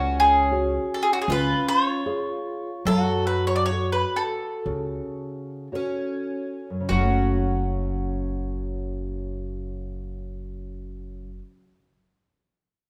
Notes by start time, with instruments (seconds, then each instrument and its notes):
Already playing: upright bass C#2, nylon-string guitar C#4, twelve-string acoustic guitar C#4, mandolin F#4
0.20 mandolin G#4
0.51 nylon-string guitar F#4 G#4 C#5
0.94 mandolin A4
1.03 mandolin G#4
1.13 mandolin F#4
1.22 mandolin G#4
1.28 upright bass C#2, nylon-string guitar C#4, twelve-string acoustic guitar F4
1.32 mandolin B4
1.68 mandolin C#5
2.06 nylon-string guitar G#4 C#5 F5
2.85 upright bass F#2, nylon-string guitar F#3, twelve-string acoustic guitar F#4, mandolin A4
3.27 mandolin B4
3.47 mandolin C#5
3.56 mandolin D5
3.66 mandolin C#5
3.71 nylon-string guitar F#4 A4 C#5
3.92 mandolin B4
4.16 mandolin A4
4.66 upright bass C#2, nylon-string guitar C#3
5.72 twelve-string acoustic guitar C#4, nylon-string guitar F#4 A4 C#5
6.70 nylon-string guitar F#2
6.80 nylon-string guitar C#3
6.89 upright bass F#1, nylon-string guitar F#3, twelve-string acoustic guitar C#4, mandolin F#4
6.99 nylon-string guitar A3
7.10 nylon-string guitar C#4